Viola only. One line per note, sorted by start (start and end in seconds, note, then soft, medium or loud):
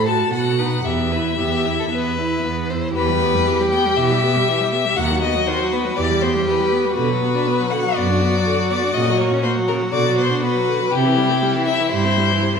0.08 0.32 F#4 soft
0.33 0.60 F#4 soft
0.59 0.85 D#4 soft
0.85 1.13 B3 soft
1.12 1.40 E4 soft
1.39 1.67 B3 soft
1.65 1.91 E4 soft
1.92 2.20 B3 soft
2.18 2.46 E4 soft
2.44 2.72 B3 soft
2.70 2.96 E4 soft
2.96 3.10 E3 medium
3.09 3.23 G3 medium
3.22 3.36 B3 medium
3.34 3.49 G3 medium
3.47 3.62 E3 medium
3.60 3.75 G3 medium
3.73 3.87 B3 medium
3.86 3.98 G3 soft
3.98 4.13 E3 medium
4.11 4.25 G3 medium
4.24 4.37 B3 medium
4.36 4.50 G3 soft
4.49 4.62 E3 medium
4.61 4.74 G3 soft
4.73 4.86 B3 soft
4.85 4.97 G3 soft
4.98 5.12 D#3 medium
5.10 5.24 F#3 medium
5.23 5.37 B3 medium
5.35 5.49 F#3 medium
5.48 5.62 D#3 medium
5.60 5.74 F#3 medium
5.72 5.86 B3 soft
5.85 5.97 F#3 medium
5.97 6.12 E3 medium
6.10 6.24 G3 medium
6.23 6.37 B3 soft
6.35 6.49 G3 soft
6.47 6.61 E3 soft
6.60 6.74 G3 soft
6.72 6.86 B3 soft
6.85 6.97 G3 soft
6.97 7.11 D3 medium
7.10 7.24 F#3 medium
7.22 7.36 B3 medium
7.35 7.49 D4 soft
7.47 7.61 B3 medium
7.60 7.73 F#3 medium
7.72 7.86 D3 medium
7.85 7.96 F#3 medium
7.97 8.10 B3 soft
8.09 8.23 D4 soft
8.21 8.35 B3 soft
8.33 8.47 F#3 soft
8.46 8.60 D3 soft
8.58 8.72 F#3 soft
8.71 8.84 B3 medium
8.83 8.95 D4 soft
8.95 9.10 C#3 medium
9.08 9.21 F#3 medium
9.20 9.33 A#3 medium
9.32 9.45 C#4 soft
9.44 9.58 A#3 medium
9.56 9.70 F#3 soft
9.68 9.83 C#3 medium
9.81 9.93 F#3 soft
9.93 10.08 D3 soft
10.06 10.20 F#3 medium
10.18 10.32 B3 soft
10.30 10.44 D4 medium
10.43 10.56 B3 medium
10.55 10.69 F#3 soft
10.68 10.82 D3 soft
10.81 10.92 F#3 soft
10.92 11.06 C3 medium
11.05 11.19 E3 medium
11.17 11.31 G3 medium
11.29 11.43 C4 soft
11.42 11.56 G3 medium
11.55 11.69 E3 medium
11.67 11.82 C3 soft
11.80 11.91 E3 soft
11.92 12.06 G3 medium
12.04 12.18 C4 medium
12.17 12.32 G3 soft
12.30 12.44 E3 soft
12.42 12.56 C3 medium
12.55 12.60 E3 soft